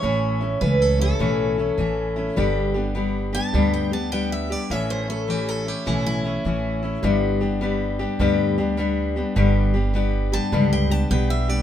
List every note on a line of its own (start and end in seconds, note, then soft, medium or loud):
0.00 0.54 A1 medium
0.00 0.41 A2 medium
0.00 0.41 E3 medium
0.00 0.42 A3 medium
0.00 0.41 C#4 medium
0.00 0.60 C#5 loud
0.04 0.39 E4 medium
0.41 0.61 A3 soft
0.41 0.61 C#4 soft
0.41 0.61 E4 soft
0.61 1.11 C#2 medium
0.61 1.00 E3 medium
0.61 1.00 A3 medium
0.61 0.99 C#4 medium
0.61 0.98 E4 medium
0.61 0.82 B4 medium
0.82 1.00 A4 medium
0.99 1.19 A3 soft
0.99 1.20 C#4 medium
0.99 1.20 E4 soft
0.99 2.72 A4 medium
1.19 1.69 B1 medium
1.19 1.58 A2 medium
1.19 1.58 E3 medium
1.19 1.58 A3 medium
1.19 1.58 C#4 medium
1.19 1.56 E4 medium
1.58 1.77 A3 soft
1.58 1.78 C#4 soft
1.58 1.78 E4 soft
1.78 2.28 A1 medium
1.78 2.16 E3 medium
1.78 2.17 A3 medium
1.78 2.16 C#4 medium
1.78 2.15 E4 medium
2.16 2.37 A3 soft
2.16 2.37 C#4 medium
2.16 2.36 E4 medium
2.36 3.38 G1 medium
2.36 2.75 G2 medium
2.36 2.75 D3 medium
2.36 2.75 G3 medium
2.36 2.75 B3 medium
2.36 2.74 D4 medium
2.36 2.73 G4 loud
2.74 2.94 G3 soft
2.74 2.95 B3 soft
2.74 2.95 D4 soft
2.74 2.95 G4 medium
2.95 3.33 G3 medium
2.95 3.33 B3 medium
2.95 3.32 D4 medium
2.95 3.32 G4 medium
3.33 3.53 G3 soft
3.33 3.53 B3 soft
3.33 3.54 D4 soft
3.33 3.53 G4 medium
3.33 3.72 A5 loud
3.54 4.55 D2 medium
3.54 3.92 G2 medium
3.54 3.92 D3 medium
3.54 3.92 G3 medium
3.54 3.92 B3 medium
3.54 3.91 D4 medium
3.54 3.90 G4 medium
3.73 3.92 G5 medium
3.91 4.10 G3 soft
3.91 4.12 B3 soft
3.91 4.12 D4 soft
3.91 4.12 G4 soft
3.91 4.12 A5 medium
4.11 4.50 G3 medium
4.11 4.50 B3 medium
4.11 4.50 D4 medium
4.11 4.49 G4 medium
4.11 4.31 G5 medium
4.32 4.52 E5 medium
4.50 4.70 G3 soft
4.50 4.70 B3 soft
4.50 4.70 D4 soft
4.50 4.70 G4 soft
4.50 4.71 D5 medium
4.70 5.71 A1 medium
4.70 5.08 A2 medium
4.70 5.08 E3 medium
4.70 5.09 A3 medium
4.70 5.08 C#4 medium
4.70 5.07 E4 medium
4.70 4.89 E5 medium
4.90 5.09 C5 medium
5.08 5.27 A3 soft
5.08 5.28 C#4 soft
5.08 5.28 E4 soft
5.08 5.30 A4 medium
5.28 5.66 E3 medium
5.28 5.67 A3 medium
5.28 5.66 C#4 medium
5.28 5.64 E4 medium
5.28 5.49 G4 medium
5.49 5.68 A4 medium
5.65 5.86 A3 soft
5.65 5.86 C#4 soft
5.65 5.86 E4 medium
5.65 5.87 G4 medium
5.86 6.36 B1 medium
5.86 6.25 A2 medium
5.86 6.25 E3 medium
5.86 6.25 A3 medium
5.86 6.24 C#4 medium
5.86 6.05 E4 medium
5.86 6.23 E4 medium
6.06 7.19 E4 medium
6.24 6.44 A3 soft
6.24 6.45 C#4 medium
6.24 6.45 E4 soft
6.45 6.95 A1 medium
6.45 6.83 E3 medium
6.45 6.83 A3 medium
6.45 6.83 C#4 medium
6.45 6.81 E4 medium
6.83 7.04 A3 soft
6.83 7.04 C#4 soft
6.83 7.03 E4 soft
7.03 8.04 G1 medium
7.03 7.41 G2 medium
7.03 7.41 D3 medium
7.03 7.42 G3 medium
7.03 7.41 B3 medium
7.03 7.41 D4 loud
7.03 7.39 G4 medium
7.41 7.60 G3 soft
7.41 7.61 B3 soft
7.41 7.62 D4 soft
7.41 7.61 G4 medium
7.61 7.99 G3 medium
7.61 8.00 B3 medium
7.61 7.99 D4 medium
7.61 7.98 G4 medium
7.99 8.19 G3 soft
7.99 8.20 B3 soft
7.99 8.20 D4 medium
7.99 8.20 G4 medium
8.19 9.20 D2 medium
8.19 8.58 G2 medium
8.19 8.58 D3 medium
8.19 8.58 G3 medium
8.19 8.58 B3 medium
8.19 8.57 D4 medium
8.19 8.57 G4 loud
8.58 8.76 G3 medium
8.58 8.77 B3 soft
8.58 8.78 D4 medium
8.58 8.78 G4 medium
8.77 9.16 G3 medium
8.77 9.16 B3 medium
8.77 9.16 D4 medium
8.77 9.15 G4 medium
9.16 9.35 G3 soft
9.16 9.36 B3 medium
9.16 9.36 D4 medium
9.16 9.36 G4 medium
9.36 10.37 G1 medium
9.36 9.74 G2 medium
9.36 9.74 D3 loud
9.36 9.75 G3 medium
9.36 9.75 B3 medium
9.36 9.74 D4 medium
9.36 9.73 G4 loud
9.74 9.92 G3 soft
9.74 9.94 B3 soft
9.74 9.95 D4 medium
9.74 9.94 G4 medium
9.94 10.32 G3 medium
9.94 10.32 B3 medium
9.94 10.32 D4 medium
9.94 10.31 G4 medium
10.32 10.52 G3 soft
10.32 10.52 B3 soft
10.32 10.52 D4 soft
10.32 10.52 G4 medium
10.32 10.71 A5 loud
10.52 11.02 C#2 medium
10.52 10.90 G2 medium
10.52 10.91 D3 medium
10.52 10.91 G3 medium
10.52 10.90 B3 medium
10.52 10.90 D4 medium
10.52 10.89 G4 medium
10.73 10.91 G5 medium
10.90 11.09 G3 soft
10.90 11.10 B3 medium
10.90 11.11 D4 medium
10.90 11.10 G4 medium
10.90 11.10 A5 medium
11.10 11.60 B1 medium
11.10 11.49 G3 medium
11.10 11.49 B3 medium
11.10 11.48 D4 medium
11.10 11.47 G4 medium
11.10 11.30 G5 medium
11.30 11.50 E5 medium
11.48 11.62 G3 soft
11.48 11.62 B3 soft
11.48 11.62 D4 soft
11.48 11.62 G4 soft
11.48 11.62 D5 medium